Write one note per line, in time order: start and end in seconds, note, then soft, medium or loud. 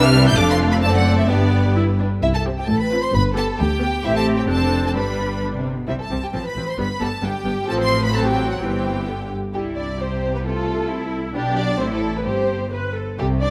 0.00 0.37 C2 medium
0.00 0.37 C3 medium
0.00 0.36 G3 medium
0.00 0.83 D4 medium
0.00 0.38 B4 medium
0.00 0.38 E5 medium
0.00 0.26 F6 loud
0.27 0.38 G6 medium
0.36 0.83 F1 medium
0.36 0.83 F2 medium
0.36 0.81 A3 medium
0.36 0.82 A4 medium
0.36 0.83 F5 medium
0.36 0.49 D6 loud
0.49 0.57 C6 loud
0.72 0.76 B5 medium
0.82 1.30 F#1 medium
0.82 1.29 F#2 medium
0.82 1.28 A3 medium
0.82 1.29 C4 medium
0.82 1.28 A4 medium
0.82 1.29 D5 medium
0.82 0.94 A5 medium
0.95 1.17 F#5 medium
1.18 1.29 E5 medium
1.28 2.01 G1 medium
1.28 2.01 G2 medium
1.28 1.71 B3 medium
1.28 1.71 D4 medium
1.28 2.02 G4 medium
1.28 2.01 B4 medium
1.28 1.76 D5 medium
1.75 1.83 E4 medium
2.00 2.08 D4 medium
2.22 2.59 C2 medium
2.22 2.59 C3 medium
2.22 2.34 E4 medium
2.22 2.27 E5 medium
2.34 2.44 A4 medium
2.34 2.42 A5 medium
2.46 2.63 C4 medium
2.46 2.63 G4 medium
2.57 2.63 G4 medium
2.57 2.68 G5 medium
2.67 3.04 A1 medium
2.67 3.04 A2 medium
2.67 2.80 A4 medium
2.67 2.79 A5 medium
2.79 3.03 B4 medium
2.79 3.02 B5 medium
2.92 3.08 C4 medium
2.92 3.08 F4 medium
3.03 3.14 C5 medium
3.03 3.14 C6 medium
3.14 3.49 G1 medium
3.14 3.49 G2 medium
3.14 3.36 B4 medium
3.14 3.22 B5 medium
3.35 3.53 B3 medium
3.35 3.53 G4 medium
3.35 3.57 A4 medium
3.35 3.45 A5 medium
3.58 3.94 D2 medium
3.58 4.03 G4 medium
3.58 4.02 G5 medium
3.81 3.98 B3 medium
3.81 3.98 G4 medium
4.04 4.46 A1 medium
4.04 4.46 A2 medium
4.04 4.46 C4 medium
4.04 4.15 E4 medium
4.04 4.46 G4 medium
4.04 4.15 E5 medium
4.15 4.23 A4 medium
4.15 4.25 A5 medium
4.38 4.49 G4 medium
4.38 4.43 G5 medium
4.48 4.95 F1 medium
4.48 4.95 F2 medium
4.48 4.94 C4 medium
4.48 4.94 D4 medium
4.48 4.82 A4 medium
4.48 4.83 A5 medium
4.85 4.95 A4 medium
4.85 4.91 A5 medium
4.94 5.68 G1 medium
4.94 5.36 G2 medium
4.94 5.67 G3 medium
4.94 5.66 D4 medium
4.94 5.42 B4 medium
4.94 5.41 B5 medium
5.41 5.46 G2 medium
5.54 5.76 C3 medium
5.77 5.88 B2 soft
5.88 5.97 C2 medium
5.88 5.96 C3 soft
5.88 5.96 G3 medium
5.88 5.96 C4 soft
5.88 5.92 E4 medium
5.88 5.93 E5 medium
6.00 6.08 A4 soft
6.00 6.22 A5 medium
6.11 6.19 C2 soft
6.11 6.19 C3 soft
6.11 6.19 G3 soft
6.11 6.19 C4 soft
6.23 6.27 G4 soft
6.23 6.34 G5 soft
6.33 6.43 A1 soft
6.33 6.41 A2 medium
6.33 6.41 F3 soft
6.33 6.41 C4 soft
6.33 6.38 A4 medium
6.33 6.45 A5 medium
6.43 6.66 B4 medium
6.43 6.67 B5 medium
6.56 6.65 A1 soft
6.56 6.64 A2 soft
6.56 6.64 F3 soft
6.56 6.64 C4 soft
6.67 6.78 C5 soft
6.67 6.79 C6 medium
6.78 6.87 G1 medium
6.78 6.86 G2 soft
6.78 6.86 G3 medium
6.78 6.86 B3 medium
6.78 7.00 B4 medium
6.78 7.00 B5 medium
7.00 7.09 G1 medium
7.00 7.08 G2 medium
7.00 7.08 G3 soft
7.00 7.08 B3 medium
7.00 7.08 A4 medium
7.00 7.23 A5 medium
7.22 7.32 G1 medium
7.22 7.30 G2 medium
7.22 7.30 G3 soft
7.22 7.30 B3 soft
7.22 7.67 G4 medium
7.22 7.68 G5 medium
7.44 7.54 G1 medium
7.44 7.52 G2 medium
7.44 7.53 G3 soft
7.44 7.53 B3 soft
7.67 8.56 A1 medium
7.67 8.55 A2 medium
7.67 8.09 F3 medium
7.67 8.09 C4 medium
7.67 7.78 A4 medium
7.67 7.73 A5 medium
7.79 8.01 C5 medium
7.79 8.02 C6 medium
8.01 8.13 B4 medium
8.01 8.14 B5 medium
8.13 8.60 F#3 medium
8.13 8.59 C4 medium
8.13 8.24 A4 medium
8.13 8.25 A5 medium
8.25 8.48 G4 medium
8.25 8.49 G5 medium
8.48 8.53 F#4 soft
8.48 8.61 F#5 medium
8.59 9.32 G1 soft
8.59 9.32 G2 medium
8.59 9.07 E3 medium
8.59 9.06 C4 medium
8.59 9.29 G4 medium
8.59 9.31 G5 medium
9.07 9.33 D3 soft
9.07 9.15 B3 soft
9.54 11.31 C2 soft
9.54 11.31 C3 soft
9.54 9.75 G3 soft
9.54 9.97 E4 soft
9.54 9.63 G4 medium
9.76 9.86 D4 medium
9.76 9.99 D5 medium
10.00 10.33 C4 soft
10.00 10.45 G4 medium
10.00 10.34 C5 medium
10.34 10.45 B3 soft
10.34 10.39 B4 medium
10.45 11.12 A3 soft
10.45 10.89 F4 medium
10.45 11.11 A4 medium
10.90 11.35 E4 medium
11.35 11.77 B1 medium
11.35 11.77 B2 medium
11.35 11.43 G3 medium
11.35 11.79 D4 medium
11.35 11.56 G4 medium
11.57 11.79 D4 medium
11.57 11.80 D5 medium
11.79 12.27 A1 medium
11.79 12.26 A2 medium
11.79 11.91 C4 medium
11.79 12.25 E4 medium
11.79 11.92 C5 medium
11.91 11.99 A3 medium
11.91 12.16 A4 medium
12.15 12.26 B3 soft
12.15 12.27 B4 soft
12.25 12.99 G1 medium
12.25 12.98 G2 soft
12.25 12.71 C4 soft
12.25 12.66 G4 medium
12.25 12.73 C5 medium
12.72 12.94 B4 medium
12.96 13.19 A4 soft
13.18 13.50 C2 medium
13.18 13.50 C3 medium
13.18 13.27 G3 medium
13.18 13.27 G4 medium
13.42 13.50 D4 medium
13.42 13.50 D5 medium